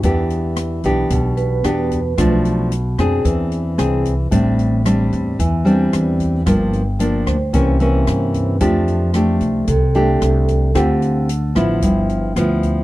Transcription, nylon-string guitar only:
\new Staff \with { instrumentName = "Nylon-string guitar" } { \time 4/4 \key e \phrygian \tempo 4 = 112 << { <b d' g'>4. <b d' g'>4. <b d' g'>8 r8 | <f a d'>4 r8 <c' d' aes'>4. <bis d' gis'>8 r8 | <g c' d'>4 <g c' d'>4 r8 <g c' d'>4. | <f bes d'>8 r8 <f bes d'>8 r8 <e bes des'>8 <e bes des'>4. |
<a d' g'>4 <a d' g'>4 r8 <a d' g'>4. | <c' f' g'>4 r8 <f b e'>4. <f b e'>4 | } \\ { e2 b,2 | b,2 e2 | a,2 e2 | g,2 c2 |
f2 c2 | d2 g,2 | } >> }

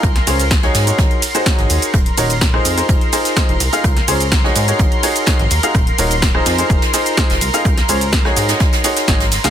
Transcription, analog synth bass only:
\new Staff \with { instrumentName = "Analog synth bass" } { \clef bass \time 4/4 \key aes \mixolydian \tempo 4 = 126 des,16 r16 des,4 aes,16 r16 aes,,16 r4 aes,,16 ees,16 r16 | ees,,16 r16 ees,,4 f,16 r16 f,,16 r4 f,,16 c,16 r16 | des,16 r16 des,4 aes,16 r16 aes,,16 r4 aes,,16 ees,16 r16 | ees,,16 r16 ees,,4 f,16 r16 f,,16 r4 f,,16 c,16 r16 |
des,16 r16 des,4 aes,16 r4 r16 aes,,8. des,16 | }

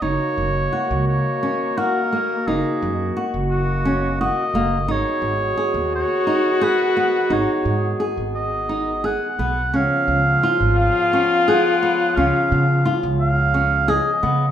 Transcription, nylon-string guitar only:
\new Staff \with { instrumentName = "Nylon-string guitar" } { \time 7/8 \key fis \major \tempo 4 = 87 dis'4 fis'4 cis'8 fis'8 ais8 | dis'4 fis'4 cis'8 fis'8 ais8 | dis'4 gis'4 dis'8 gis'8 b8 | dis'4 gis'4 dis'8 gis'8 b8 |
cis'4 eis'4 cis'8 gis'8 b8 | cis'4 eis'4 cis'8 gis'8 b8 | }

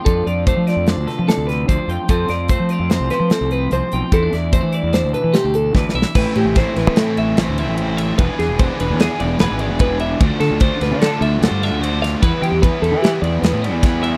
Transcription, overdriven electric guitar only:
\new Staff \with { instrumentName = "Overdriven electric guitar" } { \time 5/4 \key a \minor \tempo 4 = 148 r1 r4 | r1 r4 | r1 r4 | <a, e a c' e'>4 <e a c' e'>8 <a c' e'>8 <a, e a c' e'>4 <e a c' e'>8 <a c' e'>8 <a, e a c' e'>4 |
<e b d' gis'>4 <e b d' gis'>8 <b d' gis'>8 <e b d' gis'>4 <e b d' gis'>8 <b d' gis'>8 <e b d' gis'>4 | <d a d' f'>4 <d a d' f'>8 <a d' f'>8 <d a d' f'>4 <d a d' f'>8 <a d' f'>8 <d a d' f'>4 | <e g b e'>4 <e g b e'>8 <g b e'>8 <e g b e'>4 <e g b e'>8 <g b e'>8 <e g b e'>4 | }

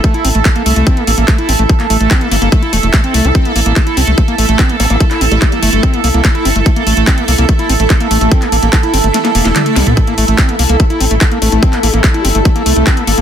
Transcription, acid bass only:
\new Staff \with { instrumentName = "Acid bass" } { \time 4/4 \key a \phrygian \tempo 4 = 145 a16 e'16 c'16 a16 a16 bes16 a16 a16 c'16 bes16 bes16 bes16 a16 e'16 c'16 a16 | a16 bes16 a16 a16 c'16 bes16 bes16 bes16 a16 e'16 a16 a16 a16 c'16 a16 e'16 | c'16 bes16 bes16 bes16 a16 e'16 c'16 a16 a16 bes16 a16 a16 c'16 bes16 bes16 bes16 | a16 e'16 c'16 a16 a16 bes16 a16 a16 c'16 bes16 bes16 bes16 a16 e'16 c'16 a16 |
a16 bes16 a16 a16 c'16 bes16 bes16 bes16 a16 e'16 c'16 a16 a16 bes16 a16 a16 | c'16 bes16 bes16 bes16 a16 e'16 c'16 a16 a16 bes16 bes16 a16 g16 a16 g16 c'16 | a16 bes16 a16 a16 c'16 bes16 bes16 bes16 a16 e'16 c'16 a16 a16 bes16 a16 a16 | c'16 bes16 bes16 bes16 a16 e'16 c'16 a16 a16 bes16 a16 a16 c'16 bes16 bes16 bes16 | }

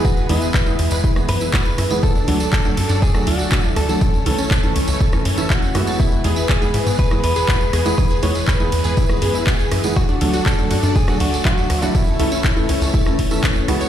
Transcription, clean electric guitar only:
\new Staff \with { instrumentName = "Clean electric guitar" } { \time 4/4 \key e \mixolydian \tempo 4 = 121 fis'8 e'2 b'4. | a'4 a'4 gis'8 fis'4 a'8~ | a'4. r4. fis'4 | e'4 gis'4 b'8 b'4. |
b'8 cis''8 b'2 r4 | fis'4 a'4 gis'8 fis'8 fis'4 | e'2. r4 | }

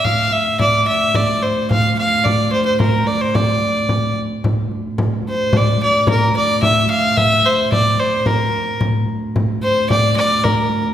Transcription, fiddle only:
\new Staff \with { instrumentName = "Fiddle" } { \time 2/4 \key d \minor \tempo 4 = 110 f''8 e''8 d''8 e''8 | d''8 c''8 f''8 f''8 | d''8 c''16 c''16 bes'8 d''16 c''16 | d''4. r8 |
r4. c''8 | d''8 d''8 bes'8 d''8 | e''8 f''8 e''8 c''8 | d''8 c''8 bes'4 |
r4. c''8 | d''8 d''8 bes'8. r16 | }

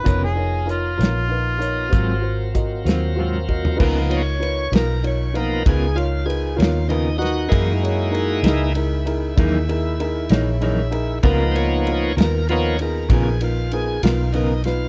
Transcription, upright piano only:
\new Staff \with { instrumentName = "Upright piano" } { \time 12/8 \key des \mixolydian \tempo 4. = 64 <ees' f' bes' des''>8 <ees' f' bes' des''>8 <ees' f' bes' des''>8 <ees' f' bes' des''>8 <ees' f' bes' ces''>8 <ees' f' bes' des''>8 <f' ges' bes' c''>8 <f' ges' bes' c''>8 <f' ges' bes' ees''>8 <f' ges' bes' c''>8 <f' ges' bes' c''>8 <f' ges' bes' ees''>8 | <ees' f' bes' ces''>8 <ees' f' bes' des''>8 <ees' f' bes' ces''>8 <ees' f' bes' ces''>8 <ees' f' bes' des''>8 <ees' f' bes' ces''>8 <ees' f' bes' ces''>8 <ees' f' bes' des''>8 <ees' f' bes' ces''>8 <ees' f' bes' des''>8 <ees' f' bes' ces''>8 <ees' f' bes' ces''>8 | <ees' fes' aes' bes'>8 <ees' fes' aes' des''>8 <ees' fes' aes' bes'>8 <ees' fes' aes' bes'>8 <ees' fes' aes' bes'>8 <ees' fes' aes' bes'>8 <ees' fes' aes' bes'>8 <ees' fes' aes' bes'>8 <ees' fes' aes' bes'>8 <ees' fes' aes' des''>8 <ees' fes' aes' des''>8 <ees' fes' aes' bes'>8 | <ces' ees' f' bes'>8 <ces' ees' f' bes'>8 <ces' ees' f' bes'>8 <ces' ees' f' bes'>8 <ces' ees' f' bes'>8 <ces' ees' f' aes'>8 <ces' ees' f' bes'>8 <ces' ees' f' bes'>8 <ces' ees' f' bes'>8 <ces' ees' f' bes'>8 <ces' ees' f' bes'>8 <ces' ees' f' ces''>8 | }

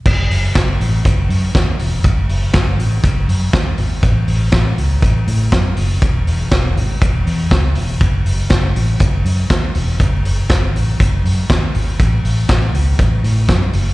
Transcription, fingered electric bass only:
\new Staff \with { instrumentName = "Fingered electric bass" } { \clef bass \time 4/4 \key fis \dorian \tempo 4 = 121 fis,,8 fis,,8 fis,,8 a,,8 fis,,8 fis,8 dis,8 e,,8 | fis,,8 fis,,8 fis,,8 a,,8 fis,,8 fis,8 dis,8 gis,,8 | a,,8 a,,8 a,,8 cis,8 a,,8 a,8 fis,8 fis,,8 | e,,8 e,,8 e,,8 gis,,8 e,,8 e,8 cis,8 e,,8 |
fis,,8 fis,,8 fis,,8 a,,8 fis,,8 fis,8 dis,8 e,,8 | fis,,8 fis,,8 fis,,8 a,,8 fis,,8 fis,8 dis,8 gis,,8 | a,,8 a,,8 a,,8 cis,8 a,,8 a,8 fis,8 fis,,8 | }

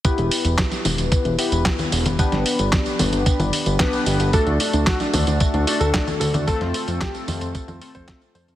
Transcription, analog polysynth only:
\new Staff \with { instrumentName = "Analog polysynth" } { \time 4/4 \key e \minor \tempo 4 = 112 <b e' g' b'>2~ <b e' g' b'>8 <b e' g' b'>4. | <b d' g' b'>2. <b d' g' b'>4 | <a d' fis' a'>2~ <a d' fis' a'>8 <a d' fis' a'>4. | <a c' f' a'>2~ <a c' f' a'>8 <a c' f' a'>4. | }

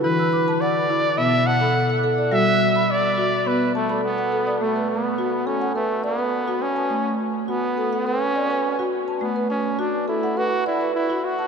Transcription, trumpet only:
\new Staff \with { instrumentName = "Trumpet" } { \time 4/4 \key a \mixolydian \tempo 4 = 104 b'4 d''4 e''8 fis''4 r8 | e''4 d''4 b'8 a8 b4 | a8 b4 cis'8 a8 b4 cis'8~ | cis'8 r8 b4 cis'4. r8 |
b8 cis'8 d'8 e'8 fis'8 e'8 e'8 fis'8 | }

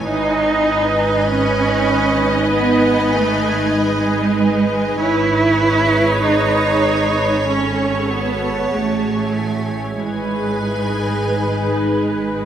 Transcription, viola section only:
\new Staff \with { instrumentName = "Viola section" } { \time 4/4 \key gis \phrygian \tempo 4 = 96 << { dis''1~ | dis''1 | cis''1~ | cis''2.~ cis''8 r8 |
b'1 | } \\ { b'1~ | b'1 | b'1 | a'2 gis'4. r8 |
gis'1 | } >> }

